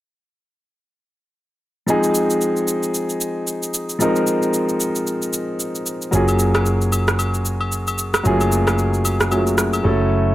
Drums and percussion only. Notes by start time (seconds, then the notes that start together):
1.88 shaker
2.03 shaker
2.15 shaker
2.30 shaker
2.41 shaker
2.56 shaker
2.68 shaker
2.83 shaker
2.94 shaker
3.09 shaker
3.21 shaker
3.47 shaker
3.63 shaker
3.74 shaker
3.89 shaker
4.00 shaker
4.16 shaker
4.27 shaker
4.42 shaker
4.54 shaker
4.69 shaker
4.80 shaker
4.95 shaker
5.07 shaker
5.22 shaker
5.33 shaker
5.60 shaker
5.75 shaker
5.86 shaker
6.02 shaker
6.13 shaker
6.28 high agogo, shaker
6.39 shaker
6.55 cross-stick, high agogo, shaker
6.66 shaker
6.81 shaker
6.92 high agogo, shaker
7.08 cross-stick, shaker
7.19 high agogo, shaker
7.34 shaker
7.45 shaker
7.61 high agogo
7.72 shaker
7.87 high agogo, shaker
7.98 shaker
8.14 cross-stick, high agogo, shaker
8.25 shaker
8.41 high agogo, shaker
8.52 shaker
8.67 cross-stick, high agogo, shaker
8.78 shaker
8.94 shaker
9.05 high agogo, shaker
9.20 cross-stick, shaker
9.32 high agogo, shaker
9.47 shaker
9.58 cross-stick, shaker
9.73 high agogo, shaker